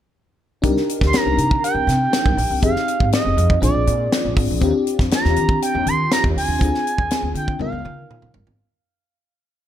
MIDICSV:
0, 0, Header, 1, 5, 480
1, 0, Start_track
1, 0, Key_signature, -3, "minor"
1, 0, Tempo, 497925
1, 615, Time_signature, 4, 2, 24, 8
1, 9330, End_track
2, 0, Start_track
2, 0, Title_t, "Analog synth lead"
2, 0, Program_c, 0, 81
2, 1028, Note_on_c, 0, 84, 82
2, 1117, Note_on_c, 0, 82, 103
2, 1131, Note_off_c, 0, 84, 0
2, 1575, Note_off_c, 0, 82, 0
2, 1581, Note_on_c, 0, 79, 101
2, 2499, Note_off_c, 0, 79, 0
2, 2536, Note_on_c, 0, 77, 100
2, 2981, Note_off_c, 0, 77, 0
2, 3016, Note_on_c, 0, 75, 90
2, 3461, Note_off_c, 0, 75, 0
2, 3503, Note_on_c, 0, 74, 78
2, 4179, Note_off_c, 0, 74, 0
2, 4959, Note_on_c, 0, 82, 92
2, 5392, Note_off_c, 0, 82, 0
2, 5422, Note_on_c, 0, 79, 99
2, 5668, Note_on_c, 0, 84, 105
2, 5682, Note_off_c, 0, 79, 0
2, 5899, Note_off_c, 0, 84, 0
2, 5908, Note_on_c, 0, 82, 101
2, 6012, Note_off_c, 0, 82, 0
2, 6142, Note_on_c, 0, 80, 110
2, 7057, Note_off_c, 0, 80, 0
2, 7103, Note_on_c, 0, 79, 89
2, 7320, Note_off_c, 0, 79, 0
2, 7341, Note_on_c, 0, 77, 79
2, 8017, Note_off_c, 0, 77, 0
2, 9330, End_track
3, 0, Start_track
3, 0, Title_t, "FM electric piano"
3, 0, Program_c, 1, 5
3, 598, Note_on_c, 1, 62, 78
3, 605, Note_on_c, 1, 63, 67
3, 613, Note_on_c, 1, 67, 71
3, 618, Note_on_c, 1, 70, 81
3, 822, Control_c, 1, 64, 127
3, 2487, Note_off_c, 1, 62, 0
3, 2491, Note_off_c, 1, 63, 0
3, 2495, Note_off_c, 1, 67, 0
3, 2498, Note_off_c, 1, 70, 0
3, 2522, Note_on_c, 1, 60, 65
3, 2527, Note_on_c, 1, 63, 58
3, 2537, Note_on_c, 1, 67, 56
3, 2542, Note_on_c, 1, 68, 68
3, 2547, Control_c, 1, 64, 0
3, 2740, Control_c, 1, 64, 127
3, 3463, Note_off_c, 1, 60, 0
3, 3471, Note_off_c, 1, 63, 0
3, 3474, Note_on_c, 1, 60, 60
3, 3476, Note_off_c, 1, 67, 0
3, 3478, Note_off_c, 1, 68, 0
3, 3480, Note_on_c, 1, 62, 57
3, 3492, Note_on_c, 1, 65, 57
3, 3500, Note_on_c, 1, 68, 68
3, 3504, Control_c, 1, 64, 0
3, 3700, Control_c, 1, 64, 127
3, 4423, Note_off_c, 1, 60, 0
3, 4426, Note_off_c, 1, 62, 0
3, 4432, Note_off_c, 1, 65, 0
3, 4436, Note_off_c, 1, 68, 0
3, 4441, Note_on_c, 1, 60, 79
3, 4446, Note_on_c, 1, 62, 74
3, 4456, Note_on_c, 1, 65, 73
3, 4464, Note_on_c, 1, 67, 81
3, 4465, Control_c, 1, 64, 0
3, 4617, Control_c, 1, 64, 127
3, 6326, Note_off_c, 1, 60, 0
3, 6329, Note_off_c, 1, 62, 0
3, 6334, Note_off_c, 1, 65, 0
3, 6338, Note_off_c, 1, 67, 0
3, 6354, Note_on_c, 1, 60, 66
3, 6368, Note_on_c, 1, 62, 59
3, 6372, Note_on_c, 1, 65, 58
3, 6381, Control_c, 1, 64, 0
3, 6384, Note_on_c, 1, 68, 72
3, 6550, Control_c, 1, 64, 127
3, 7303, Note_off_c, 1, 60, 0
3, 7310, Note_off_c, 1, 62, 0
3, 7312, Note_off_c, 1, 65, 0
3, 7316, Note_on_c, 1, 59, 59
3, 7318, Note_off_c, 1, 68, 0
3, 7324, Note_on_c, 1, 63, 58
3, 7333, Note_on_c, 1, 65, 54
3, 7340, Note_on_c, 1, 70, 62
3, 7343, Control_c, 1, 64, 0
3, 7533, Control_c, 1, 64, 127
3, 8264, Note_off_c, 1, 59, 0
3, 8268, Note_off_c, 1, 63, 0
3, 8273, Note_off_c, 1, 65, 0
3, 8277, Note_off_c, 1, 70, 0
3, 8303, Control_c, 1, 64, 0
3, 9330, End_track
4, 0, Start_track
4, 0, Title_t, "Upright bass"
4, 0, Program_c, 2, 32
4, 613, Note_on_c, 2, 36, 84
4, 700, Note_off_c, 2, 36, 0
4, 980, Note_on_c, 2, 38, 80
4, 1064, Note_off_c, 2, 38, 0
4, 1212, Note_on_c, 2, 36, 81
4, 1299, Note_off_c, 2, 36, 0
4, 1323, Note_on_c, 2, 48, 76
4, 1499, Note_off_c, 2, 48, 0
4, 1684, Note_on_c, 2, 36, 87
4, 1773, Note_off_c, 2, 36, 0
4, 1804, Note_on_c, 2, 48, 93
4, 1980, Note_off_c, 2, 48, 0
4, 2174, Note_on_c, 2, 36, 85
4, 2280, Note_off_c, 2, 36, 0
4, 2286, Note_on_c, 2, 34, 82
4, 2407, Note_off_c, 2, 34, 0
4, 2413, Note_on_c, 2, 36, 74
4, 2499, Note_off_c, 2, 36, 0
4, 2532, Note_on_c, 2, 29, 80
4, 2619, Note_off_c, 2, 29, 0
4, 2896, Note_on_c, 2, 32, 74
4, 2981, Note_off_c, 2, 32, 0
4, 3131, Note_on_c, 2, 29, 83
4, 3218, Note_off_c, 2, 29, 0
4, 3252, Note_on_c, 2, 41, 88
4, 3424, Note_off_c, 2, 41, 0
4, 3488, Note_on_c, 2, 34, 102
4, 3576, Note_off_c, 2, 34, 0
4, 3606, Note_on_c, 2, 34, 81
4, 3694, Note_off_c, 2, 34, 0
4, 3733, Note_on_c, 2, 46, 94
4, 3904, Note_off_c, 2, 46, 0
4, 4097, Note_on_c, 2, 34, 75
4, 4181, Note_off_c, 2, 34, 0
4, 4212, Note_on_c, 2, 32, 78
4, 4298, Note_off_c, 2, 32, 0
4, 4342, Note_on_c, 2, 34, 79
4, 4424, Note_off_c, 2, 34, 0
4, 4448, Note_on_c, 2, 39, 91
4, 4535, Note_off_c, 2, 39, 0
4, 4814, Note_on_c, 2, 41, 88
4, 4899, Note_off_c, 2, 41, 0
4, 5061, Note_on_c, 2, 39, 93
4, 5143, Note_off_c, 2, 39, 0
4, 5175, Note_on_c, 2, 51, 93
4, 5345, Note_off_c, 2, 51, 0
4, 5540, Note_on_c, 2, 39, 94
4, 5623, Note_off_c, 2, 39, 0
4, 5653, Note_on_c, 2, 51, 96
4, 5824, Note_off_c, 2, 51, 0
4, 6019, Note_on_c, 2, 39, 88
4, 6102, Note_off_c, 2, 39, 0
4, 6132, Note_on_c, 2, 38, 79
4, 6217, Note_off_c, 2, 38, 0
4, 6247, Note_on_c, 2, 39, 71
4, 6369, Note_off_c, 2, 39, 0
4, 6373, Note_on_c, 2, 38, 96
4, 6458, Note_off_c, 2, 38, 0
4, 6735, Note_on_c, 2, 39, 85
4, 6819, Note_off_c, 2, 39, 0
4, 6966, Note_on_c, 2, 38, 85
4, 7053, Note_off_c, 2, 38, 0
4, 7079, Note_on_c, 2, 50, 90
4, 7255, Note_off_c, 2, 50, 0
4, 7320, Note_on_c, 2, 37, 98
4, 7409, Note_off_c, 2, 37, 0
4, 7445, Note_on_c, 2, 37, 87
4, 7533, Note_off_c, 2, 37, 0
4, 7565, Note_on_c, 2, 49, 94
4, 7739, Note_off_c, 2, 49, 0
4, 7931, Note_on_c, 2, 37, 76
4, 8017, Note_off_c, 2, 37, 0
4, 8044, Note_on_c, 2, 31, 80
4, 8133, Note_off_c, 2, 31, 0
4, 8167, Note_on_c, 2, 32, 71
4, 8254, Note_off_c, 2, 32, 0
4, 9330, End_track
5, 0, Start_track
5, 0, Title_t, "Drums"
5, 611, Note_on_c, 9, 42, 73
5, 613, Note_on_c, 9, 36, 91
5, 707, Note_off_c, 9, 42, 0
5, 710, Note_off_c, 9, 36, 0
5, 741, Note_on_c, 9, 38, 30
5, 838, Note_off_c, 9, 38, 0
5, 862, Note_on_c, 9, 42, 69
5, 958, Note_off_c, 9, 42, 0
5, 977, Note_on_c, 9, 36, 79
5, 985, Note_on_c, 9, 38, 35
5, 1073, Note_off_c, 9, 36, 0
5, 1082, Note_off_c, 9, 38, 0
5, 1089, Note_on_c, 9, 42, 78
5, 1100, Note_on_c, 9, 38, 86
5, 1186, Note_off_c, 9, 42, 0
5, 1196, Note_off_c, 9, 38, 0
5, 1333, Note_on_c, 9, 42, 63
5, 1430, Note_off_c, 9, 42, 0
5, 1457, Note_on_c, 9, 36, 87
5, 1553, Note_off_c, 9, 36, 0
5, 1580, Note_on_c, 9, 42, 76
5, 1677, Note_off_c, 9, 42, 0
5, 1818, Note_on_c, 9, 42, 60
5, 1820, Note_on_c, 9, 38, 31
5, 1914, Note_off_c, 9, 42, 0
5, 1916, Note_off_c, 9, 38, 0
5, 2055, Note_on_c, 9, 38, 98
5, 2055, Note_on_c, 9, 42, 85
5, 2151, Note_off_c, 9, 38, 0
5, 2151, Note_off_c, 9, 42, 0
5, 2175, Note_on_c, 9, 36, 84
5, 2271, Note_off_c, 9, 36, 0
5, 2296, Note_on_c, 9, 46, 69
5, 2393, Note_off_c, 9, 46, 0
5, 2531, Note_on_c, 9, 42, 76
5, 2532, Note_on_c, 9, 36, 93
5, 2627, Note_off_c, 9, 42, 0
5, 2628, Note_off_c, 9, 36, 0
5, 2661, Note_on_c, 9, 38, 33
5, 2757, Note_off_c, 9, 38, 0
5, 2776, Note_on_c, 9, 42, 70
5, 2873, Note_off_c, 9, 42, 0
5, 2896, Note_on_c, 9, 36, 80
5, 2992, Note_off_c, 9, 36, 0
5, 3012, Note_on_c, 9, 42, 77
5, 3023, Note_on_c, 9, 38, 95
5, 3109, Note_off_c, 9, 42, 0
5, 3119, Note_off_c, 9, 38, 0
5, 3256, Note_on_c, 9, 42, 61
5, 3353, Note_off_c, 9, 42, 0
5, 3373, Note_on_c, 9, 36, 88
5, 3469, Note_off_c, 9, 36, 0
5, 3495, Note_on_c, 9, 42, 84
5, 3591, Note_off_c, 9, 42, 0
5, 3734, Note_on_c, 9, 42, 63
5, 3830, Note_off_c, 9, 42, 0
5, 3976, Note_on_c, 9, 38, 100
5, 3976, Note_on_c, 9, 42, 80
5, 4072, Note_off_c, 9, 38, 0
5, 4072, Note_off_c, 9, 42, 0
5, 4210, Note_on_c, 9, 36, 94
5, 4218, Note_on_c, 9, 46, 74
5, 4306, Note_off_c, 9, 36, 0
5, 4314, Note_off_c, 9, 46, 0
5, 4447, Note_on_c, 9, 42, 77
5, 4450, Note_on_c, 9, 36, 98
5, 4544, Note_off_c, 9, 42, 0
5, 4546, Note_off_c, 9, 36, 0
5, 4693, Note_on_c, 9, 42, 69
5, 4789, Note_off_c, 9, 42, 0
5, 4812, Note_on_c, 9, 36, 79
5, 4818, Note_on_c, 9, 38, 34
5, 4908, Note_off_c, 9, 36, 0
5, 4914, Note_off_c, 9, 38, 0
5, 4929, Note_on_c, 9, 42, 83
5, 4940, Note_on_c, 9, 38, 100
5, 5026, Note_off_c, 9, 42, 0
5, 5036, Note_off_c, 9, 38, 0
5, 5062, Note_on_c, 9, 38, 31
5, 5159, Note_off_c, 9, 38, 0
5, 5170, Note_on_c, 9, 42, 65
5, 5266, Note_off_c, 9, 42, 0
5, 5291, Note_on_c, 9, 36, 94
5, 5387, Note_off_c, 9, 36, 0
5, 5421, Note_on_c, 9, 42, 81
5, 5517, Note_off_c, 9, 42, 0
5, 5655, Note_on_c, 9, 42, 61
5, 5751, Note_off_c, 9, 42, 0
5, 5895, Note_on_c, 9, 38, 99
5, 5895, Note_on_c, 9, 42, 77
5, 5992, Note_off_c, 9, 38, 0
5, 5992, Note_off_c, 9, 42, 0
5, 6016, Note_on_c, 9, 36, 82
5, 6112, Note_off_c, 9, 36, 0
5, 6147, Note_on_c, 9, 46, 74
5, 6243, Note_off_c, 9, 46, 0
5, 6373, Note_on_c, 9, 36, 87
5, 6381, Note_on_c, 9, 42, 76
5, 6469, Note_off_c, 9, 36, 0
5, 6477, Note_off_c, 9, 42, 0
5, 6503, Note_on_c, 9, 38, 31
5, 6599, Note_off_c, 9, 38, 0
5, 6621, Note_on_c, 9, 42, 69
5, 6718, Note_off_c, 9, 42, 0
5, 6733, Note_on_c, 9, 36, 84
5, 6829, Note_off_c, 9, 36, 0
5, 6849, Note_on_c, 9, 42, 88
5, 6860, Note_on_c, 9, 38, 95
5, 6946, Note_off_c, 9, 42, 0
5, 6956, Note_off_c, 9, 38, 0
5, 7087, Note_on_c, 9, 42, 66
5, 7184, Note_off_c, 9, 42, 0
5, 7210, Note_on_c, 9, 36, 87
5, 7306, Note_off_c, 9, 36, 0
5, 7334, Note_on_c, 9, 48, 50
5, 7430, Note_off_c, 9, 48, 0
5, 7572, Note_on_c, 9, 47, 61
5, 7668, Note_off_c, 9, 47, 0
5, 7815, Note_on_c, 9, 45, 74
5, 7911, Note_off_c, 9, 45, 0
5, 7927, Note_on_c, 9, 45, 70
5, 8023, Note_off_c, 9, 45, 0
5, 8041, Note_on_c, 9, 43, 87
5, 8137, Note_off_c, 9, 43, 0
5, 8164, Note_on_c, 9, 43, 78
5, 8260, Note_off_c, 9, 43, 0
5, 9330, End_track
0, 0, End_of_file